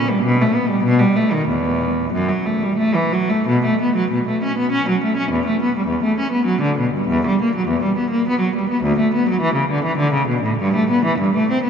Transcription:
Already playing: C#4
0.10 G3
0.24 B2
0.41 A3
0.55 B3
0.68 G3
0.84 B2
0.98 G3
1.16 A3
1.32 D#3
1.48 E2
2.13 F#2
2.29 F#3
2.46 A3
2.63 G3
2.77 A3
2.95 E3
3.13 F#3
3.29 A3
3.48 B2
3.65 A3
3.82 B3
3.96 F#3
4.11 B2
4.28 A3
4.44 C#4
4.58 B3
4.72 C#4
4.89 F#3
5.04 A3
5.17 C#4
5.31 E2
5.47 A3
5.62 B3
5.77 G3
5.87 E2
6.04 A3
6.19 C#4
6.32 B3
6.46 F#3
6.62 D3
6.79 B2
6.94 G2
7.08 E2
7.27 G3
7.42 A#3
7.56 F#3
7.68 E2
7.82 G3
7.96 B3
8.10 A#3
8.28 B3
8.40 F#3
8.55 G3
8.70 B3
8.83 D2
9.00 A3
9.14 B3
9.29 F#3
9.41 E3
9.55 C#3
9.71 D3
9.85 E3
9.98 D3
10.13 C#3
10.28 B2
10.42 A2
10.59 G2
10.75 A3
10.90 B3
11.05 E3
11.19 G2
11.36 A3
11.51 C4
11.63 B3

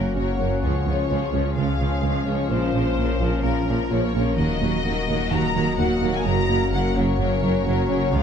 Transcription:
Already playing: F#1 F#3 A#3 C#4 F#4 A#4 F#5
0.15 F#1 F#2 F#3 A#3 C#4 A#4 C#5
0.39 F#1 F#2 F#3 A#3 C#4 A#4
0.62 C#2 C#3 F3 G#3 C#4 F4 G#4 C#5 F5
0.85 C#2 C#3 F3 G#3 C#4 F4
1.09 C#2 C#3 F3 G#3 C#4 F4
1.32 C#2 C#3 F3 G#3 C#4 F4
1.56 C#2 C#3 F3 G#3 C#4 F4 F5
1.79 C#2 C#3 F3 G#3 C#4 F4
2.02 C#2 C#3 F3 G#3 C#4 F4
2.26 C#2 C#3 F3 G#3 C#4 F4 C#5
2.49 A#1 A#2 F3 A#3 C#4 A#4 C5
2.73 A#1 A#2 F3 A#3 C#4 A#4
2.96 A#1 A#2 F3 A#3 C#4 A#4
3.20 A#1 A#2 F3 A#3 C#4 F4 A#4
3.43 A#1 A#2 F3 A#3 C#4 A#4
3.67 A#1 A#2 F3 A#3 C#4 A#4
3.90 A#1 A#2 F3 A#3 C#4 F4 A#4 C#5
4.14 A#1 A#2 F3 A#3 C#4 F4 A#4
4.37 D#1 D#2 D#3 F#3 A#3 F#4 A#4 D#5
4.61 D#2 F#3 A#3 F#4 A#4
4.84 D#2 F#3 A#3 F#4 A#4
5.07 D#2 F#3 A#3 F#4 A#4
5.31 D#2 D#3 F#3 A#3 F#4 A#4 A#5
5.55 D#2 F#3 A#3 F#4 A#4
5.77 D#2 F#3 A#3 F#4 A#4 F#5
6.01 D#2 F#3 A#3 F#4 A#4
6.15 G#5
6.25 F#1 F#2 F#3 A#3 C#4 A#4 F#5 A#5
6.48 F#1 F#2 F#3 A#3 C#4 A#4
6.72 F#1 F#2 F#3 A#3 C#4 A#4 F#5
6.95 F#1 F#2 F#3 A#3 C#4 A#4 C#5
7.18 F#1 F#2 F#3 A#3 C#4 A#4
7.42 F#1 F#2 F#3 A#3 C#4 A#4
7.65 F#1 F#2 F#3 A#3 C#4 A#4
7.88 F#1 F#2 F#3 A#3 C#4 A#4
8.12 C#2 C#3 F3 G#3 C#4 F4 G#4 F5

